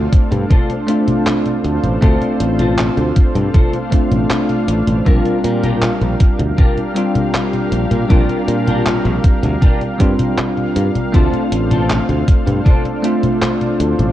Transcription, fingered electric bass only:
0, 0, Header, 1, 2, 480
1, 0, Start_track
1, 0, Tempo, 759494
1, 1280, Time_signature, 4, 2, 24, 8
1, 8925, End_track
2, 0, Start_track
2, 0, Title_t, "Fingered electric bass"
2, 0, Program_c, 0, 33
2, 198, Note_on_c, 0, 43, 90
2, 280, Note_off_c, 0, 43, 0
2, 1039, Note_on_c, 0, 38, 84
2, 1121, Note_off_c, 0, 38, 0
2, 1159, Note_on_c, 0, 33, 86
2, 1241, Note_off_c, 0, 33, 0
2, 1279, Note_on_c, 0, 38, 99
2, 1361, Note_off_c, 0, 38, 0
2, 1518, Note_on_c, 0, 33, 84
2, 1817, Note_off_c, 0, 33, 0
2, 1878, Note_on_c, 0, 38, 102
2, 1960, Note_off_c, 0, 38, 0
2, 2119, Note_on_c, 0, 43, 86
2, 2200, Note_off_c, 0, 43, 0
2, 2601, Note_on_c, 0, 33, 84
2, 2681, Note_off_c, 0, 33, 0
2, 2958, Note_on_c, 0, 33, 81
2, 3041, Note_off_c, 0, 33, 0
2, 3080, Note_on_c, 0, 33, 96
2, 3161, Note_off_c, 0, 33, 0
2, 3200, Note_on_c, 0, 34, 101
2, 3282, Note_off_c, 0, 34, 0
2, 3439, Note_on_c, 0, 46, 86
2, 3738, Note_off_c, 0, 46, 0
2, 3800, Note_on_c, 0, 34, 105
2, 3881, Note_off_c, 0, 34, 0
2, 4039, Note_on_c, 0, 38, 89
2, 4120, Note_off_c, 0, 38, 0
2, 4879, Note_on_c, 0, 34, 82
2, 4961, Note_off_c, 0, 34, 0
2, 5000, Note_on_c, 0, 46, 88
2, 5081, Note_off_c, 0, 46, 0
2, 5121, Note_on_c, 0, 34, 97
2, 5202, Note_off_c, 0, 34, 0
2, 5357, Note_on_c, 0, 46, 86
2, 5657, Note_off_c, 0, 46, 0
2, 5720, Note_on_c, 0, 34, 105
2, 5801, Note_off_c, 0, 34, 0
2, 5960, Note_on_c, 0, 38, 89
2, 6041, Note_off_c, 0, 38, 0
2, 6321, Note_on_c, 0, 43, 105
2, 6402, Note_off_c, 0, 43, 0
2, 6800, Note_on_c, 0, 43, 88
2, 6882, Note_off_c, 0, 43, 0
2, 7041, Note_on_c, 0, 38, 102
2, 7122, Note_off_c, 0, 38, 0
2, 7279, Note_on_c, 0, 33, 88
2, 7578, Note_off_c, 0, 33, 0
2, 7641, Note_on_c, 0, 38, 104
2, 7721, Note_off_c, 0, 38, 0
2, 7880, Note_on_c, 0, 43, 88
2, 7961, Note_off_c, 0, 43, 0
2, 8721, Note_on_c, 0, 38, 83
2, 8802, Note_off_c, 0, 38, 0
2, 8840, Note_on_c, 0, 33, 87
2, 8921, Note_off_c, 0, 33, 0
2, 8925, End_track
0, 0, End_of_file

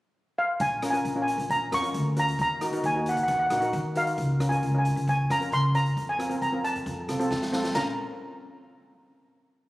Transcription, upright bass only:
0, 0, Header, 1, 2, 480
1, 0, Start_track
1, 0, Key_signature, -5, "minor"
1, 0, Tempo, 446429
1, 647, Time_signature, 4, 2, 24, 8
1, 10419, End_track
2, 0, Start_track
2, 0, Title_t, "Upright bass"
2, 0, Program_c, 0, 32
2, 646, Note_on_c, 0, 34, 76
2, 1075, Note_off_c, 0, 34, 0
2, 1129, Note_on_c, 0, 34, 71
2, 1451, Note_off_c, 0, 34, 0
2, 1482, Note_on_c, 0, 34, 75
2, 1807, Note_off_c, 0, 34, 0
2, 1849, Note_on_c, 0, 41, 84
2, 2064, Note_off_c, 0, 41, 0
2, 2090, Note_on_c, 0, 38, 90
2, 2519, Note_off_c, 0, 38, 0
2, 2569, Note_on_c, 0, 39, 82
2, 2999, Note_off_c, 0, 39, 0
2, 3052, Note_on_c, 0, 39, 83
2, 3375, Note_off_c, 0, 39, 0
2, 3412, Note_on_c, 0, 39, 68
2, 3734, Note_off_c, 0, 39, 0
2, 3766, Note_on_c, 0, 34, 91
2, 3985, Note_off_c, 0, 34, 0
2, 4013, Note_on_c, 0, 51, 101
2, 4443, Note_off_c, 0, 51, 0
2, 4490, Note_on_c, 0, 37, 80
2, 4921, Note_off_c, 0, 37, 0
2, 4974, Note_on_c, 0, 37, 76
2, 5297, Note_off_c, 0, 37, 0
2, 5334, Note_on_c, 0, 37, 80
2, 5657, Note_off_c, 0, 37, 0
2, 5698, Note_on_c, 0, 41, 95
2, 5912, Note_off_c, 0, 41, 0
2, 5936, Note_on_c, 0, 49, 95
2, 6364, Note_off_c, 0, 49, 0
2, 6419, Note_on_c, 0, 41, 80
2, 6846, Note_off_c, 0, 41, 0
2, 6900, Note_on_c, 0, 41, 73
2, 7220, Note_off_c, 0, 41, 0
2, 7262, Note_on_c, 0, 41, 68
2, 7366, Note_off_c, 0, 41, 0
2, 7377, Note_on_c, 0, 41, 95
2, 7590, Note_off_c, 0, 41, 0
2, 7615, Note_on_c, 0, 36, 83
2, 7828, Note_off_c, 0, 36, 0
2, 7857, Note_on_c, 0, 41, 89
2, 8282, Note_off_c, 0, 41, 0
2, 8330, Note_on_c, 0, 34, 84
2, 8554, Note_off_c, 0, 34, 0
2, 10419, End_track
0, 0, End_of_file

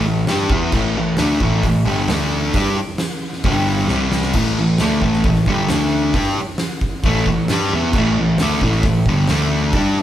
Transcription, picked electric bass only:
0, 0, Header, 1, 2, 480
1, 0, Start_track
1, 0, Tempo, 450450
1, 780, Time_signature, 4, 2, 24, 8
1, 10682, End_track
2, 0, Start_track
2, 0, Title_t, "Picked electric bass"
2, 0, Program_c, 0, 34
2, 44, Note_on_c, 0, 33, 78
2, 274, Note_off_c, 0, 33, 0
2, 288, Note_on_c, 0, 43, 91
2, 517, Note_off_c, 0, 43, 0
2, 527, Note_on_c, 0, 40, 103
2, 756, Note_off_c, 0, 40, 0
2, 778, Note_on_c, 0, 33, 115
2, 1003, Note_off_c, 0, 33, 0
2, 1038, Note_on_c, 0, 33, 91
2, 1254, Note_off_c, 0, 33, 0
2, 1269, Note_on_c, 0, 38, 99
2, 1490, Note_off_c, 0, 38, 0
2, 1501, Note_on_c, 0, 33, 99
2, 1726, Note_off_c, 0, 33, 0
2, 1743, Note_on_c, 0, 33, 89
2, 1963, Note_off_c, 0, 33, 0
2, 1969, Note_on_c, 0, 31, 101
2, 2201, Note_off_c, 0, 31, 0
2, 2224, Note_on_c, 0, 38, 103
2, 2673, Note_off_c, 0, 38, 0
2, 2704, Note_on_c, 0, 43, 103
2, 2930, Note_off_c, 0, 43, 0
2, 3671, Note_on_c, 0, 31, 103
2, 4118, Note_off_c, 0, 31, 0
2, 4136, Note_on_c, 0, 36, 95
2, 4591, Note_off_c, 0, 36, 0
2, 4626, Note_on_c, 0, 33, 101
2, 4853, Note_off_c, 0, 33, 0
2, 4867, Note_on_c, 0, 33, 87
2, 5093, Note_off_c, 0, 33, 0
2, 5119, Note_on_c, 0, 38, 96
2, 5337, Note_off_c, 0, 38, 0
2, 5343, Note_on_c, 0, 33, 95
2, 5571, Note_off_c, 0, 33, 0
2, 5591, Note_on_c, 0, 33, 86
2, 5816, Note_off_c, 0, 33, 0
2, 5828, Note_on_c, 0, 31, 96
2, 6054, Note_off_c, 0, 31, 0
2, 6066, Note_on_c, 0, 38, 94
2, 6516, Note_off_c, 0, 38, 0
2, 6536, Note_on_c, 0, 43, 105
2, 6768, Note_off_c, 0, 43, 0
2, 7491, Note_on_c, 0, 33, 95
2, 7724, Note_off_c, 0, 33, 0
2, 7745, Note_on_c, 0, 33, 82
2, 7971, Note_off_c, 0, 33, 0
2, 7990, Note_on_c, 0, 43, 83
2, 8214, Note_off_c, 0, 43, 0
2, 8238, Note_on_c, 0, 40, 99
2, 8450, Note_off_c, 0, 40, 0
2, 8456, Note_on_c, 0, 33, 110
2, 8685, Note_off_c, 0, 33, 0
2, 8722, Note_on_c, 0, 33, 98
2, 8938, Note_off_c, 0, 33, 0
2, 8945, Note_on_c, 0, 38, 91
2, 9169, Note_off_c, 0, 38, 0
2, 9177, Note_on_c, 0, 33, 99
2, 9404, Note_off_c, 0, 33, 0
2, 9413, Note_on_c, 0, 33, 88
2, 9642, Note_off_c, 0, 33, 0
2, 9657, Note_on_c, 0, 31, 103
2, 9883, Note_off_c, 0, 31, 0
2, 9896, Note_on_c, 0, 38, 94
2, 10344, Note_off_c, 0, 38, 0
2, 10365, Note_on_c, 0, 43, 110
2, 10595, Note_off_c, 0, 43, 0
2, 10682, End_track
0, 0, End_of_file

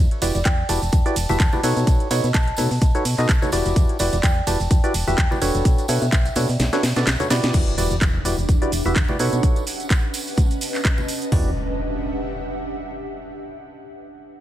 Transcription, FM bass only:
0, 0, Header, 1, 2, 480
1, 0, Start_track
1, 0, Tempo, 472441
1, 1902, Time_signature, 4, 2, 24, 8
1, 14635, End_track
2, 0, Start_track
2, 0, Title_t, "FM bass"
2, 0, Program_c, 0, 39
2, 221, Note_on_c, 0, 28, 94
2, 320, Note_off_c, 0, 28, 0
2, 355, Note_on_c, 0, 28, 93
2, 434, Note_off_c, 0, 28, 0
2, 461, Note_on_c, 0, 40, 101
2, 646, Note_off_c, 0, 40, 0
2, 701, Note_on_c, 0, 28, 101
2, 800, Note_off_c, 0, 28, 0
2, 834, Note_on_c, 0, 28, 86
2, 913, Note_off_c, 0, 28, 0
2, 942, Note_on_c, 0, 40, 85
2, 1040, Note_off_c, 0, 40, 0
2, 1180, Note_on_c, 0, 28, 96
2, 1280, Note_off_c, 0, 28, 0
2, 1315, Note_on_c, 0, 28, 90
2, 1394, Note_off_c, 0, 28, 0
2, 1421, Note_on_c, 0, 40, 102
2, 1520, Note_off_c, 0, 40, 0
2, 1660, Note_on_c, 0, 47, 90
2, 1760, Note_off_c, 0, 47, 0
2, 1794, Note_on_c, 0, 47, 96
2, 1873, Note_off_c, 0, 47, 0
2, 1901, Note_on_c, 0, 35, 101
2, 2000, Note_off_c, 0, 35, 0
2, 2140, Note_on_c, 0, 47, 94
2, 2239, Note_off_c, 0, 47, 0
2, 2274, Note_on_c, 0, 47, 95
2, 2353, Note_off_c, 0, 47, 0
2, 2381, Note_on_c, 0, 35, 103
2, 2566, Note_off_c, 0, 35, 0
2, 2619, Note_on_c, 0, 47, 102
2, 2719, Note_off_c, 0, 47, 0
2, 2754, Note_on_c, 0, 47, 87
2, 2833, Note_off_c, 0, 47, 0
2, 2861, Note_on_c, 0, 35, 85
2, 2960, Note_off_c, 0, 35, 0
2, 3100, Note_on_c, 0, 47, 96
2, 3199, Note_off_c, 0, 47, 0
2, 3234, Note_on_c, 0, 47, 90
2, 3313, Note_off_c, 0, 47, 0
2, 3342, Note_on_c, 0, 35, 100
2, 3440, Note_off_c, 0, 35, 0
2, 3582, Note_on_c, 0, 28, 88
2, 3680, Note_off_c, 0, 28, 0
2, 3715, Note_on_c, 0, 28, 93
2, 3794, Note_off_c, 0, 28, 0
2, 3821, Note_on_c, 0, 40, 97
2, 3920, Note_off_c, 0, 40, 0
2, 4061, Note_on_c, 0, 28, 94
2, 4160, Note_off_c, 0, 28, 0
2, 4193, Note_on_c, 0, 28, 95
2, 4273, Note_off_c, 0, 28, 0
2, 4302, Note_on_c, 0, 40, 104
2, 4486, Note_off_c, 0, 40, 0
2, 4541, Note_on_c, 0, 28, 103
2, 4640, Note_off_c, 0, 28, 0
2, 4674, Note_on_c, 0, 28, 86
2, 4753, Note_off_c, 0, 28, 0
2, 4782, Note_on_c, 0, 40, 84
2, 4880, Note_off_c, 0, 40, 0
2, 5021, Note_on_c, 0, 28, 93
2, 5120, Note_off_c, 0, 28, 0
2, 5154, Note_on_c, 0, 28, 89
2, 5233, Note_off_c, 0, 28, 0
2, 5262, Note_on_c, 0, 40, 103
2, 5361, Note_off_c, 0, 40, 0
2, 5501, Note_on_c, 0, 28, 90
2, 5600, Note_off_c, 0, 28, 0
2, 5634, Note_on_c, 0, 28, 97
2, 5713, Note_off_c, 0, 28, 0
2, 5742, Note_on_c, 0, 35, 97
2, 5841, Note_off_c, 0, 35, 0
2, 5980, Note_on_c, 0, 47, 97
2, 6080, Note_off_c, 0, 47, 0
2, 6114, Note_on_c, 0, 47, 93
2, 6193, Note_off_c, 0, 47, 0
2, 6222, Note_on_c, 0, 35, 102
2, 6406, Note_off_c, 0, 35, 0
2, 6462, Note_on_c, 0, 47, 101
2, 6560, Note_off_c, 0, 47, 0
2, 6595, Note_on_c, 0, 47, 87
2, 6674, Note_off_c, 0, 47, 0
2, 6701, Note_on_c, 0, 35, 87
2, 6800, Note_off_c, 0, 35, 0
2, 6941, Note_on_c, 0, 47, 95
2, 7040, Note_off_c, 0, 47, 0
2, 7075, Note_on_c, 0, 47, 90
2, 7154, Note_off_c, 0, 47, 0
2, 7182, Note_on_c, 0, 35, 93
2, 7280, Note_off_c, 0, 35, 0
2, 7421, Note_on_c, 0, 47, 94
2, 7520, Note_off_c, 0, 47, 0
2, 7554, Note_on_c, 0, 47, 83
2, 7633, Note_off_c, 0, 47, 0
2, 7662, Note_on_c, 0, 40, 97
2, 7761, Note_off_c, 0, 40, 0
2, 7901, Note_on_c, 0, 28, 90
2, 8000, Note_off_c, 0, 28, 0
2, 8034, Note_on_c, 0, 28, 91
2, 8113, Note_off_c, 0, 28, 0
2, 8142, Note_on_c, 0, 40, 101
2, 8326, Note_off_c, 0, 40, 0
2, 8380, Note_on_c, 0, 28, 97
2, 8480, Note_off_c, 0, 28, 0
2, 8515, Note_on_c, 0, 28, 84
2, 8594, Note_off_c, 0, 28, 0
2, 8622, Note_on_c, 0, 40, 84
2, 8720, Note_off_c, 0, 40, 0
2, 8861, Note_on_c, 0, 28, 93
2, 8960, Note_off_c, 0, 28, 0
2, 8995, Note_on_c, 0, 28, 89
2, 9074, Note_off_c, 0, 28, 0
2, 9102, Note_on_c, 0, 40, 101
2, 9201, Note_off_c, 0, 40, 0
2, 9342, Note_on_c, 0, 47, 90
2, 9440, Note_off_c, 0, 47, 0
2, 9475, Note_on_c, 0, 47, 92
2, 9554, Note_off_c, 0, 47, 0
2, 11501, Note_on_c, 0, 40, 95
2, 11725, Note_off_c, 0, 40, 0
2, 14635, End_track
0, 0, End_of_file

